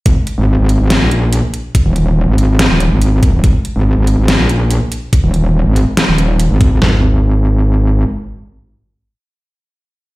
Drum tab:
HH |xx-xxxxx|xx-xxxxx|xx-xxxxx|xx-xxxxx|
SD |----o---|----o---|----o---|----o---|
FT |--------|--------|--------|--------|
BD |o-------|o------o|o-------|o------o|

HH |--------|--------|
SD |o-------|--------|
FT |o-------|--------|
BD |--------|--------|